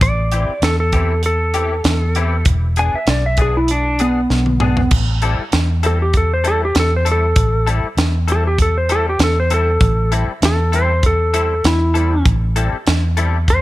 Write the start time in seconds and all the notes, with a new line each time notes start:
0.01 A1 D5, kick, closed hi-hat
0.31 E3 C4 E4 G4, closed hi-hat
0.62 E2 A4, snare, closed hi-hat
0.80 A4
0.92 E3 C4 E4 G4, kick, closed hi-hat
1.23 A4, closed hi-hat
1.54 E3 C4 E4 G4, closed hi-hat
1.84 E2, snare, closed hi-hat
2.15 E3 C4 E4 G4, closed hi-hat
2.45 E1, kick, closed hi-hat
2.76 B3 D4 G#4 G#5, closed hi-hat
2.94 E5, muted fingered electric bass stroke
3.07 B1 D5, snare, closed hi-hat
3.26 E5
3.37 B3 D4 G#4, kick, closed hi-hat
3.42 G#4
3.57 E4
3.68 D4, closed hi-hat
3.99 B3 D4 G#4, closed hi-hat
4.30 B1, snare
4.46 high tom
4.60 B3 D4 G#4, mid tom
4.77 floor tom
4.91 A1, kick, crash
5.22 G3 C4 E4 A4, closed hi-hat
5.52 E2, snare, closed hi-hat
5.83 G3 C4 E4 A4, closed hi-hat
6.02 G4
6.13 A4, kick, closed hi-hat
6.34 C5
6.44 G3 C4 E4 A4, closed hi-hat
6.65 G4
6.75 E2, snare, closed hi-hat
6.80 A4
6.96 C5
7.05 G3 C4 E4 A4, closed hi-hat
7.12 A4
7.36 A1, kick, closed hi-hat
7.67 G3 C4 E4 A4, closed hi-hat
7.84 muted fingered electric bass stroke
7.97 E2, snare, closed hi-hat
8.28 G3 C4 E4 A4, closed hi-hat
8.32 A4
8.47 G4
8.59 A4, kick, closed hi-hat
8.78 C5
8.89 G3 C4 E4 A4, closed hi-hat
9.09 G4
9.19 E2, snare, closed hi-hat
9.24 A4
9.40 C5
9.50 G3 C4 E4 A4, closed hi-hat
9.81 A1, kick, closed hi-hat
10.12 G3 C4 E4 A4, closed hi-hat
10.28 muted fingered electric bass stroke
10.42 E2 A4, snare, closed hi-hat
10.72 G3 C4 E4 A4 C5, closed hi-hat
11.03 A4, kick, closed hi-hat
11.34 G3 C4 E4 A4, closed hi-hat
11.64 E2 E4, snare, closed hi-hat
11.94 G3 C4 E4 A4, closed hi-hat
12.25 A1, kick, closed hi-hat
12.56 G3 C4 E4 A4, closed hi-hat
12.73 muted fingered electric bass stroke
12.87 E2, snare, closed hi-hat
13.17 G3 C4 E4 A4, closed hi-hat
13.48 C5, kick, closed hi-hat